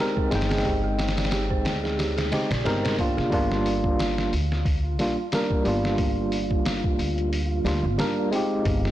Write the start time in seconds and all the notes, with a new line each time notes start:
Already playing: G4 G#4 C5 D5 G5
0.00 G#3 C4 D#4 A#4
0.17 C5, kick
0.31 G1 G#3 C4 D#4 G5, snare, open hi-hat
0.35 G5
0.41 snare, open hi-hat
0.50 G#4, snare, open hi-hat
0.58 snare, open hi-hat
0.65 G4, kick, open hi-hat
0.84 G#4
0.98 G5, snare, open hi-hat
1.08 snare, open hi-hat
1.17 D5, snare, open hi-hat
1.24 snare, open hi-hat
1.31 G4, snare, open hi-hat
1.50 C5, kick
1.65 D2 G5, snare, open hi-hat
1.83 G#4, snare
1.98 G4, snare, open hi-hat
2.17 G#4, snare, open hi-hat
2.32 G#3 C4 D#4 G4 G5, snare, open hi-hat
2.50 A#1 D5, snare, open hi-hat
2.64 G1 G#3 C4 D#4 G4 A#4, snare, open hi-hat
2.83 C5, snare, open hi-hat
2.98 A#3 D4 F4 G5, kick, open hi-hat
3.17 C2 G#4, snare
3.30 G1 G3 A#3 D4 F4, kick, open hi-hat
3.34 F4
3.52 snare
3.66 open hi-hat
3.84 kick
3.99 snare, open hi-hat
4.18 snare
4.33 D2, open hi-hat
4.52 snare
4.65 kick, open hi-hat
4.99 A#1 G3 A#3 D4 F4, snare, open hi-hat
5.32 G3 A#3 D4 A#4, snare, open hi-hat
5.51 kick
5.64 G1 G3 A#3 D4, open hi-hat
5.68 F4
5.85 snare
5.98 kick, open hi-hat
6.32 open hi-hat
6.51 kick
6.65 snare, open hi-hat
6.84 kick
6.99 D2, open hi-hat
7.18 closed hi-hat
7.33 open hi-hat
7.65 D2 G3 A#3 D4 F4, snare, open hi-hat
7.84 G1
7.98 G3 A#3 D4 A#4, snare, open hi-hat
8.31 G#3 C4 D#4, open hi-hat
8.36 G4
8.65 G1, kick, open hi-hat
8.85 snare